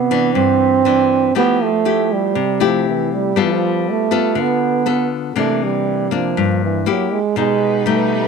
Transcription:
Already playing: nylon-string guitar C3, trombone B3
0.11 nylon-string guitar E3 D4
0.35 nylon-string guitar G2, trombone C4
0.85 nylon-string guitar E3 D4
1.35 nylon-string guitar F3 A3 E4 G4, trombone B3
1.63 trombone A3
1.85 nylon-string guitar A3 E4 G4
2.14 trombone G3
2.35 nylon-string guitar C3
2.60 nylon-string guitar A3 E4 G4
2.65 trombone F3
2.89 trombone E3
3.15 trombone G3
3.36 nylon-string guitar G3 B3 F4 A4
3.42 trombone F3
3.91 trombone A3
4.11 nylon-string guitar B3 F4 A4
4.35 nylon-string guitar D3
4.41 trombone B3
4.86 nylon-string guitar B3 F4 A4
5.36 nylon-string guitar C3 E3 A#3 D4, trombone A3
5.64 trombone G3
6.11 trombone F3, nylon-string guitar A#3 D4
6.37 nylon-string guitar G2
6.64 trombone E3
6.86 trombone F#3, nylon-string guitar A#3 E4 G4
7.13 trombone G#3
7.35 nylon-string guitar B2 D#4, trombone G#3, violin section B3 D#4 G4 B4
7.86 nylon-string guitar G3 A3 D#4, trombone A3

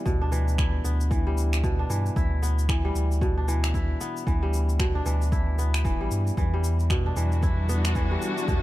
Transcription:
Already playing: kora E3 G3 B3 D4 E4
0.06 sub bass D2, kora B2, kick, shaker
0.21 kora D4
0.32 kora E3, shaker
0.48 shaker
0.58 kora E4, finger snap, kick, shaker
0.84 sub bass D2, kora B3, shaker
1.01 shaker
1.11 kora E3, kick, shaker
1.27 kora G3
1.38 shaker
1.53 finger snap, shaker
1.64 kora B2, kick, shaker
1.79 kora D4
1.90 sub bass G2, kora E3, shaker
2.06 shaker
2.16 sub bass D2, kora E4, kick, shaker
2.42 kora B3, shaker
2.59 shaker
2.69 kora E3, finger snap, kick, shaker
2.85 kora G3
2.95 sub bass D2, shaker
3.12 shaker
3.21 kora B2, kick, shaker
3.37 kora D4
3.48 kora E3, shaker
3.64 finger snap, shaker
3.74 kora E4, kick, shaker
4.01 kora B3, shaker
4.17 shaker
4.27 sub bass D2, kora E3, kick, shaker
4.43 kora G3
4.53 shaker
4.69 shaker
4.79 kora B2, finger snap, kick, shaker
4.95 kora D4
5.06 sub bass D2, kora E3, shaker
5.22 shaker
5.32 kora E4, kick, shaker
5.59 kora B3, shaker
5.74 finger snap, shaker
5.85 sub bass D1, kora E3, kick, shaker
6.01 sub bass A1, kora G3
6.11 sub bass G2, shaker
6.27 shaker
6.37 sub bass E2, kora E3, string section G3, kick, shaker
6.54 kora G3
6.64 shaker
6.80 string section D4, shaker
6.90 kora B2, finger snap, kick, shaker
7.06 kora D4, string section E4
7.16 sub bass E2, kora E3, string section F#4, shaker
7.32 shaker
7.39 kora E4, string section A4, kick, shaker
7.69 kora B3, shaker
7.85 finger snap, shaker
7.95 kora E3, kick, shaker
8.11 kora G3
8.22 shaker
8.38 shaker
8.48 sub bass E2, kora B2, kick, shaker

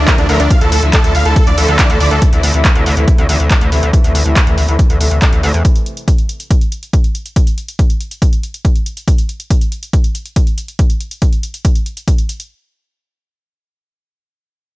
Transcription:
Already playing: downlifter
0.08 string section D3 F3 A3 E4, supersaw synth A#4, kick, clap, closed hi-hat
0.18 analog synth bass D2, supersaw synth D4, closed hi-hat
0.29 analog synth bass D2, string section D3 F3 A3 E4, supersaw synth A#4, open hi-hat
0.40 analog synth bass D2, supersaw synth D4, closed hi-hat
0.50 string section D3 F3 A3 E4, supersaw synth F5, kick, closed hi-hat
0.61 analog synth bass D2, string section D3 F3 A3 E4, supersaw synth A4, closed hi-hat
0.72 analog synth bass D2, supersaw synth A4, open hi-hat
0.83 analog synth bass D2, string section D3 F3 A3 E4, closed hi-hat
0.93 supersaw synth A4, kick, clap, closed hi-hat
1.04 analog synth bass D2, string section D3 F3 A3 E4, supersaw synth A4, closed hi-hat
1.15 analog synth bass D2, supersaw synth F5, open hi-hat
1.25 analog synth bass D2, string section D3 F3 A3 E4, supersaw synth A4, closed hi-hat
1.36 supersaw synth A4, kick, closed hi-hat
1.47 analog synth bass D2, string section D3 F3 A3 E4, supersaw synth D5, closed hi-hat
1.57 analog synth bass D2, string section D3 F3 A3 E4, supersaw synth A4, open hi-hat
1.68 analog synth bass D2, supersaw synth A4, closed hi-hat
1.79 string section D3 F3 A3 E4, supersaw synth D5, kick, clap, closed hi-hat
1.90 analog synth bass D2, supersaw synth A4, closed hi-hat
2.00 analog synth bass D2, string section D3 F3 A3 E4, supersaw synth D5, open hi-hat
2.11 analog synth bass D2, supersaw synth A4, closed hi-hat
2.22 string section C3 E3 A3 E4, kick, closed hi-hat
2.33 analog synth bass D2, string section C3 E3 A3 E4, closed hi-hat
2.43 analog synth bass D2, open hi-hat
2.54 analog synth bass D2, string section C3 E3 A3 E4, closed hi-hat
2.65 kick, clap, closed hi-hat
2.75 analog synth bass D2, string section C3 E3 A3 E4, closed hi-hat
2.86 analog synth bass D2, open hi-hat
2.97 analog synth bass D2, string section C3 E3 A3 E4, closed hi-hat
3.08 kick, closed hi-hat
3.18 analog synth bass D2, string section C3 E3 A3 E4, closed hi-hat
3.29 analog synth bass D2, string section C3 E3 A3 E4, open hi-hat
3.40 analog synth bass D2, closed hi-hat
3.50 string section C3 E3 A3 E4, kick, clap, closed hi-hat
3.61 analog synth bass D2, closed hi-hat
3.72 analog synth bass D2, string section C3 E3 A3 E4, open hi-hat
3.83 analog synth bass D2, closed hi-hat
3.93 string section C3 E3 A3 E4, kick, closed hi-hat
4.04 analog synth bass D2, string section C3 E3 A3 E4, closed hi-hat
4.15 analog synth bass D2, open hi-hat
4.26 analog synth bass D2, string section C3 E3 A3 E4, closed hi-hat
4.36 kick, clap, closed hi-hat
4.47 analog synth bass D2, string section C3 E3 A3 E4, closed hi-hat
4.58 analog synth bass D2, open hi-hat
4.68 analog synth bass D2, string section C3 E3 A3 E4, closed hi-hat
4.79 kick, closed hi-hat
4.90 analog synth bass D2, string section C3 E3 A3 E4, closed hi-hat
5.01 analog synth bass D2, string section C3 E3 A3 E4, open hi-hat
5.11 analog synth bass D2, closed hi-hat
5.22 string section C3 E3 A3 E4, kick, clap, closed hi-hat
5.33 analog synth bass D2, closed hi-hat
5.43 analog synth bass D2, string section C3 E3 A3 E4, open hi-hat
5.54 analog synth bass E2, closed hi-hat
5.65 kick, closed hi-hat
5.76 closed hi-hat
5.86 closed hi-hat
5.97 closed hi-hat
6.08 kick, closed hi-hat
6.18 closed hi-hat
6.29 closed hi-hat
6.40 closed hi-hat
6.51 kick, closed hi-hat
6.61 closed hi-hat
6.72 closed hi-hat
6.83 closed hi-hat
6.93 kick, closed hi-hat
7.04 closed hi-hat
7.15 closed hi-hat
7.26 closed hi-hat
7.36 kick, closed hi-hat
7.47 closed hi-hat
7.58 closed hi-hat
7.68 closed hi-hat
7.79 kick, closed hi-hat
7.90 closed hi-hat
8.01 closed hi-hat
8.11 closed hi-hat
8.22 kick, closed hi-hat
8.33 closed hi-hat
8.43 closed hi-hat
8.54 closed hi-hat
8.65 kick, closed hi-hat
8.76 closed hi-hat
8.86 closed hi-hat
8.97 closed hi-hat
9.08 kick, closed hi-hat
9.18 closed hi-hat
9.29 closed hi-hat
9.40 closed hi-hat
9.50 kick, closed hi-hat
9.61 closed hi-hat
9.72 closed hi-hat
9.83 closed hi-hat
9.93 kick, closed hi-hat
10.04 closed hi-hat
10.15 closed hi-hat
10.26 closed hi-hat
10.36 kick, closed hi-hat
10.47 closed hi-hat
10.58 closed hi-hat
10.68 closed hi-hat
10.79 kick, closed hi-hat
10.90 closed hi-hat
11.01 closed hi-hat
11.11 closed hi-hat
11.22 kick, closed hi-hat
11.33 closed hi-hat
11.43 closed hi-hat
11.54 closed hi-hat
11.65 kick, closed hi-hat
11.75 closed hi-hat
11.86 closed hi-hat
11.97 closed hi-hat
12.08 kick, closed hi-hat
12.18 closed hi-hat
12.29 closed hi-hat
12.40 closed hi-hat

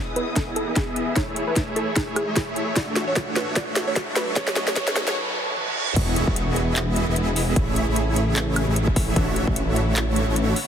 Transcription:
Already playing: string section E3 B3 G#4 D#6, supersaw synth B3 E4 G#4 D#5 E5, riser
0.16 synth pluck B4, closed hi-hat
0.36 synth pluck A4, kick, snare, closed hi-hat
0.56 synth pluck A4, closed hi-hat
0.67 supersaw synth B3 E4 G#4 D#5 E5
0.76 synth pluck G#4, kick, snare, closed hi-hat
0.96 closed hi-hat
1.16 string section A3 C#5, supersaw synth E4 C#5 E5, synth pluck C#5, kick, snare, closed hi-hat
1.36 closed hi-hat
1.47 supersaw synth A3 E4 G#4 C#5 E5, synth pluck B4
1.56 kick, snare, closed hi-hat
1.76 synth pluck A4, closed hi-hat
1.96 synth pluck G#4, kick, snare, closed hi-hat
2.16 synth pluck G#4, closed hi-hat, high woodblock
2.27 supersaw synth A3 E4 G#4 C#5 E5
2.36 synth pluck G#4, kick, snare, closed hi-hat
2.56 closed hi-hat
2.76 string section A2 D4 F#4, supersaw synth A3 D4 F#4 C#5 E5, synth pluck D5, kick, snare, closed hi-hat
2.96 snare, closed hi-hat
3.07 supersaw synth A3 D4 F#4 C#5 E5, synth pluck C#5
3.16 kick, snare, closed hi-hat
3.36 synth pluck B4, snare, closed hi-hat
3.56 supersaw synth F#4, synth pluck D5, kick, snare, closed hi-hat
3.76 snare, closed hi-hat
3.87 supersaw synth A3 D4 F#4 C#5 E5, synth pluck C#5
3.96 kick, snare, closed hi-hat
4.16 string section F#3 D#4 A4 B4, synth pluck B4, snare, closed hi-hat
4.36 supersaw synth A3 C#4 F#4 C#5 D#5, synth pluck C#5, kick, snare, closed hi-hat
4.47 snare
4.56 snare, closed hi-hat
4.67 supersaw synth A3 C#4 F#4 C#5 D#5, synth pluck C#5, snare
4.76 supersaw synth A3 C#4 F#4 C#5, synth pluck C#5, kick, snare, closed hi-hat
4.88 snare
4.96 snare, closed hi-hat
5.07 supersaw synth A3 C#4 F#4 C#5 D#5, synth pluck C#5, snare
5.16 reverse cymbal
5.56 high tom
5.68 high tom
5.87 mid tom
5.96 detuned saw bass E1, supersaw synth B3 E4 G#4 D#5 E5, string section B3 E4 G#4, kick, closed hi-hat, crash, sub drop
6.16 closed hi-hat
6.27 detuned saw bass E1, supersaw synth B3 E4 D#5 E5, kick
6.36 closed hi-hat
6.56 closed hi-hat
6.76 clap, closed hi-hat
6.96 closed hi-hat
7.07 detuned saw bass E1, supersaw synth B3 E4 G#4 D#5 E5
7.16 closed hi-hat
7.36 open hi-hat
7.56 detuned saw bass A1, string section C#3 A3, supersaw synth A3 E4 G#4 C#5, kick, closed hi-hat
7.76 closed hi-hat
7.87 detuned saw bass A1, supersaw synth A3 E4 G#4 C#5 E5
7.96 closed hi-hat
8.16 closed hi-hat
8.36 clap, closed hi-hat
8.56 closed hi-hat, high woodblock
8.67 detuned saw bass A1, supersaw synth A3 E4 G#4 C#5 E5
8.76 closed hi-hat
8.87 kick
8.96 kick, open hi-hat
9.16 detuned saw bass A1, string section D3 F#3 E4 C#5, supersaw synth A3 D4 F#4 C#5 E5, kick, closed hi-hat
9.36 closed hi-hat
9.47 detuned saw bass A1, supersaw synth A3 D4 F#4 C#5 E5, kick
9.56 closed hi-hat
9.76 closed hi-hat
9.96 clap, closed hi-hat
10.16 closed hi-hat
10.27 detuned saw bass A1, supersaw synth A3 D4 F#4 C#5 E5
10.36 closed hi-hat
10.56 string section A3 B3 F#4, open hi-hat

